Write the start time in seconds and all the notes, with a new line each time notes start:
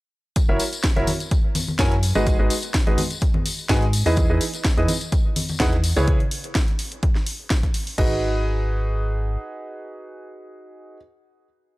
0.36 kick, closed hi-hat, tambourine
0.49 F#1 F#3 E4 F#4 A#4 C#5 E5
0.59 open hi-hat, tambourine
0.73 closed hi-hat, tambourine
0.83 kick, snare, closed hi-hat, tambourine
0.96 F#1 F#3 E4 F#4 A#4 C#5 E5, closed hi-hat
1.07 open hi-hat, tambourine, high conga
1.20 closed hi-hat, tambourine
1.31 kick, closed hi-hat, tambourine
1.55 open hi-hat, tambourine, high conga
1.67 tambourine, high conga
1.79 F#2 F#3 E4 F#4 A#4 C#5 G#5, kick, snare, closed hi-hat, tambourine
1.92 closed hi-hat
2.03 open hi-hat, tambourine
2.15 G#1 G#3 D#4 F#4 G#4 B4 D#5, tambourine
2.27 kick, closed hi-hat, tambourine
2.39 G#1 G#3 D#4 F#4 G#4 B4 D#5
2.50 open hi-hat, tambourine
2.62 closed hi-hat, tambourine
2.74 kick, snare, closed hi-hat, tambourine
2.87 G#1 G#3 D#4 F#4 G#4 B4 D#5, closed hi-hat
2.98 open hi-hat, tambourine, high conga
3.10 closed hi-hat, tambourine
3.21 kick, closed hi-hat, tambourine
3.34 high conga
3.46 open hi-hat, tambourine
3.59 tambourine
3.69 G#2 G#3 D#4 F#4 G#4 B4 G#5, kick, snare, closed hi-hat, tambourine
3.82 closed hi-hat
3.93 open hi-hat, tambourine
4.06 E2 E3 D#4 E4 G#4 B4 D#5, open hi-hat, tambourine
4.16 kick, closed hi-hat, tambourine
4.30 E2 E3 D#4 E4 G#4 B4 D#5
4.41 open hi-hat, tambourine
4.54 closed hi-hat, tambourine
4.65 kick, snare, closed hi-hat, tambourine
4.77 E2 E3 D#4 E4 G#4 B4 D#5, closed hi-hat
4.88 open hi-hat, tambourine, high conga
5.01 closed hi-hat, tambourine
5.12 kick, closed hi-hat, tambourine
5.36 open hi-hat, tambourine, high conga
5.49 tambourine, high conga
5.60 E2 D#4 E4 G#4 B4 F#5, kick, snare, closed hi-hat
5.73 closed hi-hat
5.84 open hi-hat, tambourine
5.96 C#2 C#3 C#4 E4 G#4 B4 C#5, tambourine
6.08 kick, closed hi-hat
6.20 closed hi-hat
6.31 open hi-hat
6.44 closed hi-hat
6.55 kick, snare, closed hi-hat
6.68 closed hi-hat
6.79 open hi-hat
6.92 closed hi-hat
7.03 kick, closed hi-hat
7.15 snare
7.26 open hi-hat
7.50 kick, snare, closed hi-hat
7.63 kick, closed hi-hat
7.74 open hi-hat
7.87 open hi-hat
7.98 G#1 D#4 F#4 G#4 B4 D#5, kick, crash